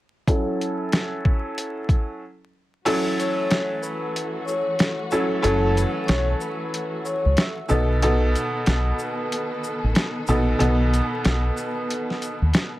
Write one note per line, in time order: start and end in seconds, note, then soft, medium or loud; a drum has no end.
0.28 2.21 F#3 medium
0.28 2.21 C#4 medium
0.28 2.21 E4 medium
0.28 2.21 A4 loud
0.28 kick loud
0.28 closed hi-hat loud
0.61 closed hi-hat medium
0.92 snare loud
0.92 closed hi-hat medium
1.25 kick medium
1.58 closed hi-hat medium
1.89 kick loud
1.89 closed hi-hat soft
2.85 7.66 E3 medium
2.85 4.96 F#3 loud
2.85 7.66 A3 medium
2.85 4.97 C#4 medium
2.85 4.97 E4 medium
2.85 7.66 F#4 medium
2.85 4.97 A4 loud
2.85 closed hi-hat loud
2.85 crash loud
3.19 3.79 C#5 medium
3.19 3.80 C#6 medium
3.19 closed hi-hat medium
3.19 shaker medium
3.51 snare loud
3.51 closed hi-hat medium
3.82 4.43 B4 medium
3.82 4.43 B5 medium
3.82 shaker medium
4.16 closed hi-hat medium
4.45 4.95 C#5 medium
4.45 4.95 C#6 medium
4.45 shaker medium
4.79 snare loud
4.79 closed hi-hat medium
5.11 5.41 F#3 medium
5.11 5.41 C#4 medium
5.11 5.41 E4 medium
5.11 5.42 A4 medium
5.11 shaker medium
5.42 5.83 F#1 loud
5.42 7.54 F#3 loud
5.42 7.54 C#4 medium
5.42 7.54 E4 medium
5.42 7.54 A4 loud
5.42 5.73 A4 loud
5.42 5.73 A5 medium
5.42 closed hi-hat loud
5.75 6.05 B4 medium
5.75 6.05 B5 medium
5.75 closed hi-hat medium
5.75 shaker medium
6.06 6.33 B1 loud
6.06 6.25 C#5 medium
6.06 6.25 C#6 medium
6.06 snare loud
6.06 closed hi-hat medium
6.29 6.40 A4 medium
6.29 6.40 A5 medium
6.40 7.01 B4 medium
6.40 7.02 B5 medium
6.40 shaker medium
6.74 closed hi-hat medium
7.05 7.34 C#5 medium
7.05 7.34 C#6 medium
7.05 shaker medium
7.25 7.35 C#2 medium
7.37 7.66 E5 medium
7.37 7.67 E6 medium
7.37 snare loud
7.37 closed hi-hat medium
7.68 8.34 B1 loud
7.68 7.99 B2 medium
7.68 12.80 D#3 medium
7.68 12.80 B3 medium
7.68 7.99 B3 medium
7.68 7.99 D#4 medium
7.68 12.80 A4 medium
7.68 8.00 A4 medium
7.68 shaker medium
8.02 10.13 B2 medium
8.02 10.13 B3 medium
8.02 10.13 D#4 medium
8.02 10.13 A4 loud
8.02 closed hi-hat loud
8.35 closed hi-hat medium
8.35 shaker medium
8.66 8.91 B1 loud
8.66 snare loud
8.66 closed hi-hat medium
8.99 shaker medium
9.32 closed hi-hat medium
9.64 shaker medium
9.84 9.93 A1 medium
9.95 snare loud
9.95 closed hi-hat medium
10.27 10.52 A#1 medium
10.27 10.57 B2 medium
10.27 10.58 B3 medium
10.27 10.58 D#4 medium
10.27 10.58 A4 medium
10.27 shaker medium
10.59 11.00 B1 loud
10.59 12.70 B2 medium
10.59 12.70 B3 medium
10.59 12.71 D#4 medium
10.59 12.71 A4 medium
10.59 closed hi-hat loud
10.94 closed hi-hat medium
10.94 shaker medium
11.25 11.49 B1 medium
11.25 snare loud
11.25 closed hi-hat medium
11.57 shaker medium
11.90 closed hi-hat medium
12.10 snare soft
12.22 closed hi-hat medium
12.22 shaker medium
12.42 12.51 D#2 medium
12.54 snare loud
12.54 closed hi-hat medium